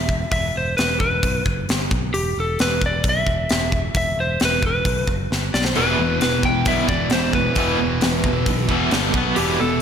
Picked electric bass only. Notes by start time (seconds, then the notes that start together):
Already playing: E1
0.32 E1
0.56 E1
0.79 E1
1.01 E1
1.24 B1
1.47 F#1
1.69 G1
1.91 B1
2.14 E1
2.38 E1
2.60 E1
2.82 E1
3.04 B1
3.27 E1
3.51 E1
3.95 E1
4.18 E1
4.42 E1
4.63 E1
4.86 B1
5.08 F#1
5.31 G1
5.54 B1
5.77 E1
5.99 E1
6.22 E1
6.43 E1
6.67 B1
6.89 E1
7.11 E1
7.56 E1
7.81 E1
8.02 E1
8.24 E1
8.46 B1
8.69 E1
8.93 G1
9.14 B1
9.38 E1
9.59 E1